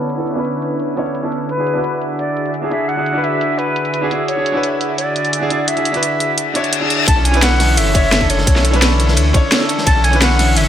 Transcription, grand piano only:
Already playing: B3 C#4 D4 E4 A4
0.17 B3 C#4 D4 E4 A4
0.34 B3 C#4 D4 E4
0.39 B4
0.96 B3 C#4 D4 E4 C#5
1.22 B3 C#4 D4 E4 A4
1.57 D4 E4 F#4 G#4
1.73 D4 E4 F#4
1.78 B4
2.62 D4 E4 F#4 G#4
2.70 D4 E4 F#4 G#4
2.96 D4 E4 F#4 G#4
3.13 D4 E4 F#4
3.18 B4
4.01 D4 E4 F#4 G#4
4.10 D4 E4 F#4 G#4
4.36 D4 E4 F#4 G#4
4.52 D4 E4 F#4
4.57 B4
5.40 D4 E4 F#4 G#4
5.49 D4 E4 F#4 G#4
5.76 D4 E4 F#4 G#4
5.92 D4 E4 F#4
5.96 B4
6.54 D4 E4 F#4 C#5
6.80 D4 E4 F#4 G#4
7.16 C#4 D4 E4 A4
7.32 C#4 D4 E4
7.37 B4
7.94 C#4 D4 E4 C#5
8.20 C#4 D4 E4 A4
8.55 C#4 D4 E4 A4
8.71 C#4 D4 E4
8.76 B4
9.33 C#4 D4 E4 C#5
9.60 C#4 D4 E4 A4
9.94 C#4 D4 E4 A4
10.11 C#4 D4 E4
10.16 B4

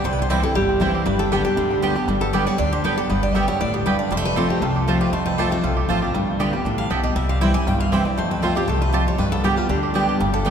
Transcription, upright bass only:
0.05 C2
0.56 G1
1.06 G1
1.57 D2
2.08 G1
2.59 D2
3.10 G1
3.60 D2
4.11 F1
4.62 C2
5.13 F1
5.64 B1
5.89 A1
6.14 G1
6.65 A1
6.90 B1
7.16 C2
7.66 G1
8.17 F2
8.68 C2
9.19 G2
9.69 D2
10.20 G1

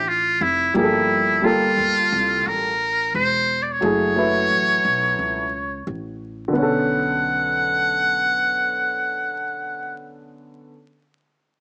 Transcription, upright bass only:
Already playing: A1
0.41 F1
0.75 G1
1.77 D2
2.12 C2
2.46 A1
3.14 E1
3.82 F#1
4.51 A1
4.85 B1
5.19 C#2
5.87 A1
6.55 B1

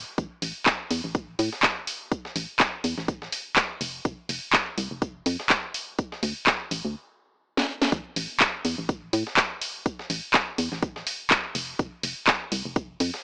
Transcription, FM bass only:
0.18 A1
0.42 A1
0.91 E2
1.04 A1
1.39 A2
2.36 A1
2.84 E2
2.98 A1
3.81 F1
4.05 F1
4.29 F1
4.78 C2
4.91 F1
5.26 F2
6.23 D2
6.71 A1
6.85 D2
7.92 A1
8.16 A1
8.65 E2
8.78 A1
9.13 A2
10.10 A1
10.58 E2
10.72 A1
11.55 F1
11.79 F1
12.04 F1
12.52 C2
12.65 F1
13.00 F2

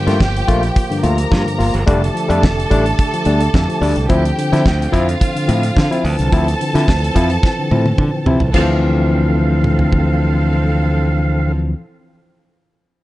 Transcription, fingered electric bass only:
0.07 G2
0.20 G1
0.48 A#1
1.04 D2
1.32 G2
1.60 G1
1.74 G1
1.88 F1
2.30 F2
2.43 F1
2.71 A1
3.26 D2
3.54 F2
3.81 D2
3.97 C2
4.10 D2
4.53 D3
4.66 D2
4.93 F2
5.49 A2
5.77 D3
6.05 D2
6.20 C2
6.32 D2
6.75 D3
6.88 D2
7.15 F2
7.71 A2
7.98 D3
8.26 C3
8.41 C2
8.54 D2

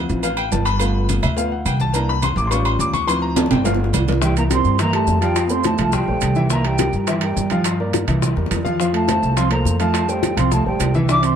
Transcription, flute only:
4.23 G5
4.37 A#5
4.52 C6
4.80 A#5
4.94 A5
5.21 G5
5.47 B5 C6
5.65 A5
5.94 G5
6.52 A#5
6.66 G5
7.08 E5
7.23 G5
8.80 F5
8.95 A5
9.38 C6
9.51 A#5
9.79 A5
10.09 G5
10.37 C6
10.52 A5
10.67 G5
11.11 D6
11.24 C6

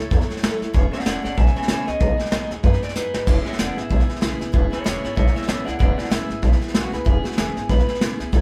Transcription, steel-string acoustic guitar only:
Already playing: C#5
0.00 A4
0.10 F#3 E4 A4 C#5
0.28 E4 A4 C#5
0.42 F#3 A3 E4 A4 C#5
0.60 E4 A4 C#5
0.73 C#3 E3 B3 C#4 G#4 C#5
0.91 B3 C#4 G#4 C#5
1.05 C#3 E3 B3 C#4 G#4 C#5
1.22 B3 C#4 G#4 C#5
1.35 B3 C#4 G#4 C#5
1.55 B3 C#4 G#4 C#5
1.68 C#3 E3 B3 C#4 G#4 C#5
1.86 B3 C#4 G#4 C#5
2.00 B3 D#4 F#4 G#4
2.18 D#4 F#4 G#4
2.31 B3 D#4 F#4 G#4
2.51 D#4 F#4 G#4
2.64 B3 D#4 F#4 G#4
2.82 D#4 F#4 G#4
2.94 B3 D#4 F#4 G#4
3.14 D#4 F#4 G#4
3.26 C#3 E3 B3 E4 G#4 B4
3.45 B3 E4 G#4 B4
3.58 C#3 E3 B3 E4 G#4 B4
3.76 B3 E4 G#4 B4
3.89 B3 E4 G#4 B4
4.08 B3 E4 G#4 B4
4.21 C#3 E3 B3 E4 G#4 B4
4.39 B3 E4 G#4 B4
4.52 C#3 E3 B3 E4 G#4 B4
4.70 B3 E4 G#4 B4
4.84 C#3 E3 B3 E4 G#4 B4
5.03 B3 E4 G#4 B4
5.15 B3 E4 G#4 B4
5.34 B3 E4 G#4 B4
5.47 C#3 E3 B3 E4 G#4 B4
5.65 B3 E4 G#4 B4
5.79 C#3 E3 B3 E4 G#4 B4
5.97 B3 E4 G#4 B4
6.10 C#3 E3 B3 E4 G#4 B4
6.29 B3 E4 G#4 B4
6.42 B3 E4 G#4 B4
6.61 B3 E4 G#4 B4
6.74 C#3 E3 B3 E4 G#4 B4
6.92 B3 E4 G#4 B4
7.05 C#3 E3 B3 E4 G#4 B4
7.23 B3 E4 G#4 B4
7.37 C#3 E3 B3 E4 G#4 B4
7.56 B3 E4 G#4 B4
7.69 B3 E4 G#4 B4
7.87 B3 E4 G#4 B4
8.01 C#3 E3 B3 E4 G#4 B4
8.19 B3 E4 G#4 B4
8.32 F#3 A3 E4 A4 C#5

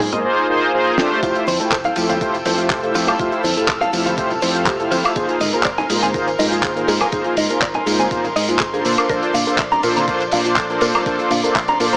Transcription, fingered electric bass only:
0.00 G#2
1.23 F1
1.47 F2
1.72 F1
1.97 F2
2.21 F1
2.46 F2
2.70 F1
2.95 F2
3.20 F1
3.44 F2
3.69 F1
3.93 F2
4.18 F1
4.43 F2
4.67 F1
4.91 F2
5.16 G#1
5.40 G#2
5.65 G#1
5.90 G#2
6.14 G#1
6.39 G#2
6.64 G#1
6.88 G#2
7.13 G#1
7.37 G#2
7.50 muted fingered electric bass stroke
7.62 G#1
7.86 G#2
8.11 G#1
8.36 G#2
8.60 G#1
8.85 A#2
9.10 A#1
9.34 A#2
9.59 A#1
9.83 A#2
10.08 A#1
10.32 A#2
10.57 A#1
10.81 A#2
11.06 A#1
11.31 A#2
11.43 muted fingered electric bass stroke
11.55 A#1
11.80 A#2

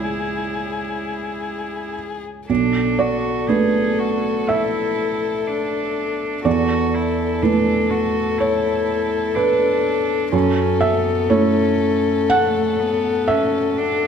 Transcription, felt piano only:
Already playing: C#2 G#3 E4 G#4 C#5 D5
2.50 B1
2.99 D5
3.48 A3 D4 B4
4.49 E5
6.45 E2 D5
7.43 A3 E4 B4
8.40 C#5
9.36 B4
10.32 F#2
10.81 E5
11.30 A3 E4 A4 C#5
12.30 F#5
13.28 E5

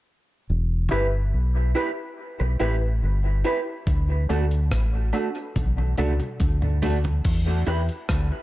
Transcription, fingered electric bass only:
0.50 E1
0.92 G1
1.34 B1
2.40 B1
2.61 A1
3.03 G1
3.87 D2
4.30 D2
4.72 A1
5.56 B1
5.99 C#2
6.40 D2
7.25 E2
7.67 E2
8.10 D2

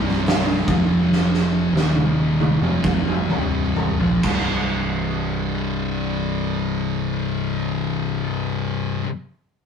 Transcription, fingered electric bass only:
Already playing: C1
0.67 F1
1.72 D#1
2.60 F1
2.84 F1
3.29 C1
3.99 A#1
4.23 C1

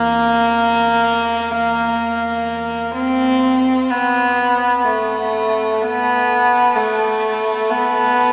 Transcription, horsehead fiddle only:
Already playing: A#3
2.94 C4
3.91 B3
4.79 B3
4.84 A3
5.82 B3
6.76 A3
7.70 B3

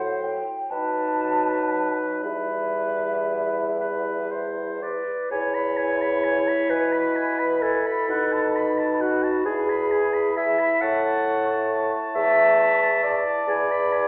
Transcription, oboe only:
Already playing: C5
0.71 B4
2.23 B4
3.80 B4
4.31 C5
4.83 D5
5.31 G#5
5.55 B5
5.77 G#5
6.02 B5
6.24 G#5
6.48 B5
6.70 G#5
6.93 B5
7.16 G#5
7.40 B5
7.63 G#5
7.87 B5
8.11 F#5
8.33 A5
8.56 B5
8.78 A5
9.01 F#5
9.23 A5
9.46 G#5
9.70 B5
9.92 G#5
10.14 B5
10.37 G#5
10.59 B5
10.82 A5
11.04 A5
11.26 A5
11.49 A5
11.72 A5
11.93 A5
12.15 A5
12.37 A5
12.59 A5
12.81 A5
13.04 A5
13.25 A5
13.49 G#5
13.71 B5
13.93 G#5

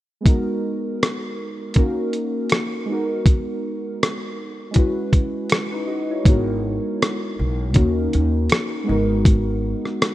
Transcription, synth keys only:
0.21 G#3 B3 D#4
0.26 F#4 A#4
1.75 A#3 C#4 D#4 F#4 A#4
2.86 G#3 B3 D#4
2.92 F#4 A#4
4.71 G#3 C#4 E4
4.76 F#4 B4
5.72 D#4 B4
5.87 F#4 D#5
6.11 E4 C#5
6.23 G#3 B3
6.27 D#4 F#4 A#4
7.73 A#3 C#4 D#4 F#4 A#4
8.84 G#3 B3 D#4
8.89 F#4 A#4

